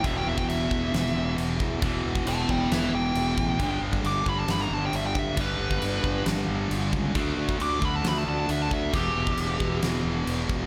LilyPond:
<<
  \new Staff \with { instrumentName = "Lead electric guitar" } { \time 4/4 \key e \minor \tempo 4 = 135 e''16 g''16 e''16 g''16 e''2 r4 | r4 <e'' a''>8 <d'' g''>8 <b' e''>8 g''4.~ | g''8 r8 d'''8 b''16 a''16 b''16 ais''16 a''16 g''16 e''16 g''16 e''8 | b'2 r2 |
r4 d'''8 b''16 a''16 b''16 a''16 a''16 a''16 e''16 a''16 e''8 | g'2 r2 | }
  \new Staff \with { instrumentName = "Distorted electric guitar" } { \clef bass \time 4/4 \key e \minor <e, b, e>1 | <e, b, e>1 | <g, d g>1 | <g, d g>1 |
<d a d'>1 | <e, b, e>1 | }
  \new Staff \with { instrumentName = "Overdriven electric guitar" } { \clef bass \time 4/4 \key e \minor <e, b, e>1 | <e, b, e>1 | <g, d g>1 | <g, d g>1 |
<d a d'>1 | <e, b, e>1 | }
  \new Staff \with { instrumentName = "Fingered electric bass" } { \clef bass \time 4/4 \key e \minor e,,8 e,,8 e,,8 e,,8 e,,8 e,,8 e,,8 e,8 | e,,8 e,,8 e,,8 e,,8 e,,8 e,,8 e,,8 a,,8 | g,,8 g,,8 g,,8 g,,8 g,,8 g,,8 g,,8 g,8 | g,,8 g,,8 g,,8 g,,8 g,,8 g,,8 g,,8 cis,8 |
d,8 d,8 d,8 d,8 d,8 d,8 d,8 d,8 | e,,8 e,,8 e,,8 e,,8 e,,8 e,,8 e,,8 e,,8 | }
  \new DrumStaff \with { instrumentName = "Drums" } \drummode { \time 4/4 <cymc bd>8. bd16 cymc8 bd8 <cymc sn>16 sn8. cymc8 bd8 | <cymc bd>8. bd16 cymc8 bd8 <cymc sn>4 cymc8 bd8 | <cymc bd>8. bd16 cymc8 bd8 <cymc sn>16 sn8. cymc8 bd8 | <cymc bd>8. bd16 cymc8 bd8 <cymc sn>4 cymc8 bd8 |
<cymc bd>8. bd16 cymc8 bd8 <cymc sn>16 sn8. cymc8 bd8 | <cymc bd>8. bd16 cymc8 bd8 <cymc sn>4 cymc8 bd8 | }
>>